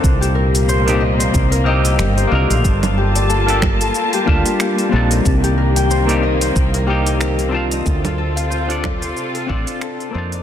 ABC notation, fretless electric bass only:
X:1
M:4/4
L:1/16
Q:"Swing 16ths" 1/4=92
K:Gm
V:1 name="Fretless electric bass" clef=bass
C,,8 C,,4 G,,,2 C,, B,,, | G,,,8 z2 D,, z3 B,,,2 | C,,8 C,,8 | D,,8 z2 A,,, z3 F,,2 |]